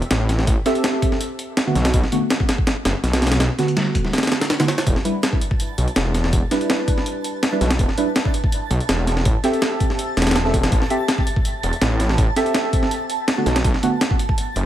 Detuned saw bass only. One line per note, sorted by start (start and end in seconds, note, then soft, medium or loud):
0.11 0.46 A1 loud
0.47 0.56 A1 loud
1.75 1.92 B1 loud
1.94 2.02 B1 loud
2.85 2.94 F#1 medium
3.04 3.39 B1 loud
3.40 3.49 B1 loud
4.87 4.95 E1 loud
5.78 5.87 B1 medium
5.96 6.32 E1 medium
6.33 6.42 E1 medium
7.61 7.77 B1 loud
7.79 7.88 E1 loud
8.70 8.79 B1 medium
8.89 9.24 E1 medium
9.25 9.34 A1 loud
10.17 10.71 E1 medium
10.72 10.81 A1 loud
11.63 11.72 E1 medium
11.82 12.17 A1 loud
12.18 12.27 A1 loud
13.46 13.63 B1 loud
13.64 13.73 B1 loud
14.56 14.65 F#1 medium